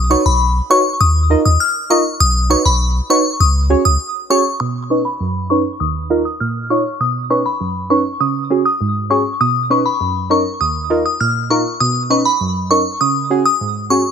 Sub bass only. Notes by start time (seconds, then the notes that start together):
Already playing: B1
0.26 B1
1.00 D#2
1.45 D#2
2.20 B1
2.65 B1
3.40 C#2
3.85 C#2